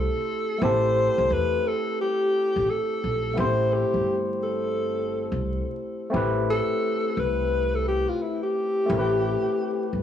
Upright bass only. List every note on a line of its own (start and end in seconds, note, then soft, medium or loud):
0.62 1.06 A1 loud
1.18 1.28 C2 medium
1.30 1.58 E2 medium
2.56 2.66 A1 medium
3.04 3.31 A#1 medium
3.37 3.82 A1 loud
3.94 5.28 G1 medium
5.32 5.59 C2 medium
6.14 6.58 A1 loud
7.17 8.03 C2 medium
8.90 9.34 A1 loud
9.93 10.03 G1 medium